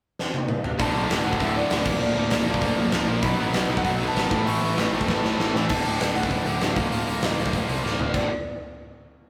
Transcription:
0.19 snare
0.34 high tom
0.48 mid tom
0.64 floor tom
0.79 picked electric bass D1, distorted electric guitar D2 A2 D3, harp A5, kick, open hi-hat
0.94 picked electric bass B1, distorted electric guitar D2 A2 D3
1.09 picked electric bass D1, distorted electric guitar D2 A2 D3, snare, open hi-hat
1.24 picked electric bass D1, distorted electric guitar D2 A2 D3, harp F#5
1.33 kick
1.40 picked electric bass D1, distorted electric guitar D2 A2 D3, harp E5, kick, open hi-hat
1.56 distorted electric guitar D2 A2 D3, harp D5
1.68 picked electric bass D1, distorted electric guitar D2, snare, open hi-hat
1.72 distorted electric guitar D2 A2 D3
1.85 picked electric bass D1, distorted electric guitar A#2 F3 A#3, kick, crash
1.99 picked electric bass D1, distorted electric guitar A#2 F3 A#3, harp D5
2.03 distorted electric guitar A#2 F3
2.14 picked electric bass D1, distorted electric guitar A#2 F3
2.19 distorted electric guitar A#3
2.30 picked electric bass D1, distorted electric guitar A#2 F3 A#3, harp D5, snare, open hi-hat
2.46 picked electric bass D1, distorted electric guitar A#2 F3 A#3
2.54 kick
2.61 picked electric bass D1, distorted electric guitar A#2 F3 A#3, kick, open hi-hat
2.77 picked electric bass D1, distorted electric guitar A#2 F3 A#3
2.92 picked electric bass D1, distorted electric guitar A#2 F3 A#3, snare, open hi-hat
3.08 picked electric bass A#1, distorted electric guitar A#2 F3 A#3
3.22 picked electric bass B1, distorted electric guitar B2 F#3 B3, harp B5, kick, open hi-hat
3.38 picked electric bass A1, distorted electric guitar B2 F#3 B3
3.54 picked electric bass B1, distorted electric guitar B2 F#3 B3, snare, open hi-hat
3.69 picked electric bass B1, distorted electric guitar B2 F#3 B3, harp G5
3.77 harp F#5, kick
3.84 picked electric bass B1, distorted electric guitar B2 F#3 B3, harp F#5, kick, open hi-hat
4.01 distorted electric guitar B2 F#3 B3
4.08 harp A5
4.15 picked electric bass G#1, distorted electric guitar B2 F#3 B3, snare, open hi-hat
4.31 picked electric bass A1, distorted electric guitar A2 E3 A3, kick
4.38 harp B5
4.46 picked electric bass A1, distorted electric guitar A2 E3 A3, harp C#6, open hi-hat
4.62 picked electric bass A1, distorted electric guitar A2 E3 A3
4.76 picked electric bass A1, distorted electric guitar A2 E3 A3, snare, open hi-hat
4.93 picked electric bass A1, distorted electric guitar A2 E3 A3
5.01 kick
5.06 picked electric bass A1, distorted electric guitar A2 A3, kick, snare
5.11 distorted electric guitar A2 E3 A3
5.23 picked electric bass A1, distorted electric guitar A2 E3 A3, snare
5.38 picked electric bass A1, distorted electric guitar A2 E3 A3, snare
5.53 picked electric bass A2, distorted electric guitar A2 E3, snare
5.58 distorted electric guitar A3
5.69 picked electric bass D1, distorted electric guitar D2 A2 D3, harp A5, kick, crash
5.85 picked electric bass D1, distorted electric guitar D2 A2 D3, open hi-hat
6.00 picked electric bass D1, distorted electric guitar D2 A2 D3, snare, open hi-hat
6.14 picked electric bass D1, distorted electric guitar D2 A2 D3, harp F#5, open hi-hat
6.23 kick
6.30 picked electric bass D1, distorted electric guitar D2 A2 D3, kick, open hi-hat
6.45 picked electric bass D1, distorted electric guitar D2 A2 D3, open hi-hat
6.61 picked electric bass D1, distorted electric guitar D2 A2 D3, snare, open hi-hat
6.73 picked electric bass D1, harp F5, kick, open hi-hat
6.79 distorted electric guitar A#2 F3 A#3
6.90 picked electric bass D1, distorted electric guitar A#2 F3 A#3, open hi-hat
7.07 picked electric bass D1, distorted electric guitar A#2 F3 A#3, open hi-hat
7.22 picked electric bass D1, distorted electric guitar A#2 F3 A#3, snare, open hi-hat
7.38 picked electric bass D1, distorted electric guitar A#2 F3 A#3, open hi-hat
7.46 kick
7.53 picked electric bass D1, distorted electric guitar A#2 F3 A#3, kick, open hi-hat
7.68 picked electric bass C2, distorted electric guitar A#2 F3 A#3, open hi-hat
7.83 picked electric bass D1, distorted electric guitar A#2 F3 A#3, snare
7.98 picked electric bass D1, distorted electric guitar A#2 F3 A#3, floor tom
8.14 picked electric bass D1, distorted electric guitar D2 A2 D3, harp D5, kick, crash

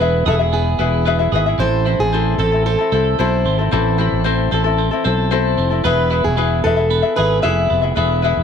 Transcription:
Already playing: fretless electric bass E1, clean electric guitar E4 G#4, steel-string acoustic guitar B4
0.00 clean electric guitar B3, ukulele E4 G#4 B4 E5
0.26 fretless electric bass E1, ukulele E4 G#4 B4 E5, clean electric guitar G#4, steel-string acoustic guitar A4
0.39 ukulele E4 G#4 E5
0.53 clean electric guitar B3, steel-string acoustic guitar G#4
0.79 fretless electric bass E1, clean electric guitar E4, ukulele E4 G#4 B4 E5
1.05 clean electric guitar B3, ukulele E4 G#4 B4 E5
1.19 ukulele E4 G#4 E5
1.32 fretless electric bass G#1, ukulele E4 G#4 B4 E5, clean electric guitar G#4
1.46 ukulele E4 G#4 E5
1.58 fretless electric bass A1, clean electric guitar E3, ukulele C4 E4 A4 C5, steel-string acoustic guitar C5
1.86 ukulele C4 E4 A4 C5, clean electric guitar E4
1.99 fretless electric bass A1, steel-string acoustic guitar G#4
2.12 clean electric guitar C4, ukulele C4 E4 A4 C5
2.38 fretless electric bass A1, ukulele C4 E4 A4 C5, steel-string acoustic guitar A4, clean electric guitar A4
2.52 ukulele C4 E4 A4
2.66 clean electric guitar C4, steel-string acoustic guitar A4
2.79 ukulele C4 E4 A4
2.92 fretless electric bass C2, ukulele C4 E4 A4 C5, clean electric guitar A4
3.19 fretless electric bass B1, ukulele C4 E4 A4 C5, clean electric guitar E4, steel-string acoustic guitar C5
3.45 fretless electric bass G#1, clean electric guitar C4
3.59 ukulele C4 E4 A4
3.71 fretless electric bass A1, clean electric guitar E3, ukulele C4 E4 A4 C5
3.98 ukulele C4 E4 A4 C5, clean electric guitar E4
4.12 fretless electric bass A1
4.24 ukulele C4 E4 A4 C5, clean electric guitar C4
4.51 fretless electric bass A1, ukulele C4 E4 A4 C5, clean electric guitar A4
4.64 ukulele C4 E4 A4
4.78 clean electric guitar C4
4.91 ukulele C4 E4 A4
5.04 fretless electric bass B1, ukulele C4 E4 A4 C5, clean electric guitar A4
5.31 ukulele C4 E4 A4 C5, clean electric guitar E4
5.58 fretless electric bass F1, clean electric guitar C4
5.70 ukulele C4 E4 A4
5.84 fretless electric bass E1, clean electric guitar B3, ukulele E4 G#4 B4 E5, steel-string acoustic guitar B4
6.10 clean electric guitar E4, ukulele E4 G#4 B4 E5
6.24 fretless electric bass E1, steel-string acoustic guitar G#4
6.37 clean electric guitar B3, ukulele E4 G#4 B4 E5
6.63 fretless electric bass E1, ukulele E4 G#4 B4 E5, steel-string acoustic guitar A4
6.76 ukulele E4 G#4 E5
6.91 clean electric guitar B3
7.02 ukulele E4 G#4 E5
7.16 fretless electric bass G#1, ukulele E4 G#4 B4 E5, clean electric guitar G#4, steel-string acoustic guitar B4
7.42 fretless electric bass F1, ukulele E4 G#4 B4 E5, clean electric guitar E4, steel-string acoustic guitar E5
7.70 fretless electric bass F1, clean electric guitar B3
7.82 ukulele E4 G#4 E5
7.95 fretless electric bass E1, clean electric guitar B3, ukulele E4 G#4 B4 E5
8.22 ukulele E4 G#4 B4 E5, clean electric guitar E4
8.37 fretless electric bass E1

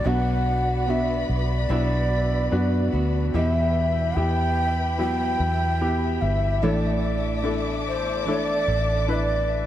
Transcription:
Already playing: string section F#4 D5
0.04 fingered electric bass B1, steel-string acoustic guitar B2 F#3 B3 D4 F#4, grand piano B3 D4 F#4, string section B4 B5, shakuhachi F#5
0.86 steel-string acoustic guitar F#3 B3 D4 F#4, grand piano B3 D4 F#4, shakuhachi E5
1.30 fingered electric bass B1
1.52 shakuhachi D5
1.69 fingered electric bass B1, steel-string acoustic guitar B2 F#3 B3 D4 F#4, grand piano B3 D4 E4
2.52 fingered electric bass F#2, grand piano B3 D4 F#4
2.92 fingered electric bass D2, steel-string acoustic guitar B3 D4 F#4
3.34 steel-string acoustic guitar E2 B2 E3 G3 B3 E4, fingered electric bass E2, grand piano B2 B3 E4 G4, string section B4 E5 G5 B5, shakuhachi D#5
3.49 shakuhachi E5
4.16 fingered electric bass E2, steel-string acoustic guitar E3 G3 B3 E4, grand piano B3 E4 G4, shakuhachi G5
4.97 steel-string acoustic guitar E3 G3 B3, grand piano F#3 B3 E4, shakuhachi G5
5.03 steel-string acoustic guitar E4
5.40 fingered electric bass E2
5.81 grand piano B3 E4 G4
6.21 fingered electric bass G1, shakuhachi E5
6.62 fingered electric bass A1, steel-string acoustic guitar A2 E3 A3 D4 E4, grand piano A2 E3 D4 E4 A4, string section A4 D5 D6, shakuhachi C#5
6.74 shakuhachi D5
7.43 steel-string acoustic guitar E3 A3 D4 E4, grand piano D4 E4 A4
7.88 shakuhachi C5
8.25 steel-string acoustic guitar E3 A3 D4, grand piano D4 E4 A4
8.29 steel-string acoustic guitar E4, shakuhachi D5
8.68 fingered electric bass A1
9.08 grand piano D4 E4 B4, shakuhachi D#5
9.15 shakuhachi D5

